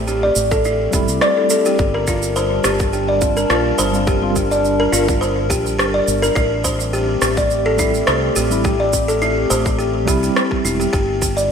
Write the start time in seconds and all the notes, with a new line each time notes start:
Already playing: A1 A3 C4 G4
0.08 G4, cabasa
0.23 D5
0.36 A1, cabasa
0.51 A4, kick, cabasa
0.64 E4, cabasa
0.91 E1 G3 C4 G4, kick, cabasa
0.95 E4
1.08 C2, cabasa
1.21 D5, cross-stick, cabasa
1.37 A4
1.50 A4, cabasa
1.65 G4, cabasa
1.78 G1 G3 D4 A#4 A5, kick, cabasa
1.94 A#4
2.07 F4, kick, cabasa
2.22 cabasa
2.36 C5, cabasa
2.64 G1 G4, cross-stick, cabasa
2.80 kick, cabasa
2.93 G4, cabasa
3.08 D5
3.21 G3 C4 F4, kick, cabasa
3.37 A#4, cabasa
3.50 A#1 F4, cross-stick, cabasa
3.79 G1 C5, cabasa
3.92 G3 C4 F4, cabasa
4.07 G4, kick, cabasa
4.21 G3 C4 F4
4.36 G4, kick, cabasa
4.51 D5, cabasa
4.65 cabasa
4.80 A#4
4.93 G1 F4, cabasa
5.08 kick, cabasa
5.21 C5, cabasa
5.50 A#1 G4, kick, cabasa
5.66 cabasa
5.78 G1 G4, cross-stick, cabasa
5.94 D5
6.08 G1, cabasa
6.22 A#4, cabasa
6.35 A1 A3 C4 E4 G4, kick, cabasa
6.64 C5, kick, cabasa
6.80 cabasa
6.93 G4, cabasa
7.22 A1 G4, cross-stick, cabasa
7.37 D5, kick, cabasa
7.50 cabasa
7.66 A4
7.77 G3 C4 E4, kick, cabasa
7.94 cabasa
8.07 C2 C5, cross-stick, cabasa
8.36 A1 G4, cabasa
8.50 G3 C4 E4, cabasa
8.64 G4, kick, cabasa
8.80 D5
8.93 kick, cabasa
9.08 A4, cabasa
9.22 E4, cabasa
9.50 A1 C5, cabasa
9.66 kick, cabasa
9.79 G4, cabasa
10.05 C2 G3 C4 E4 G4, kick, cabasa
10.23 G4, cabasa
10.36 cross-stick, cabasa
10.51 G4, kick
10.65 E1 E4, cabasa
10.80 G4, cabasa
10.93 G1 G3 D4 G4 A#4 A5, kick, cabasa
11.22 G4, kick, cabasa
11.37 D5, cabasa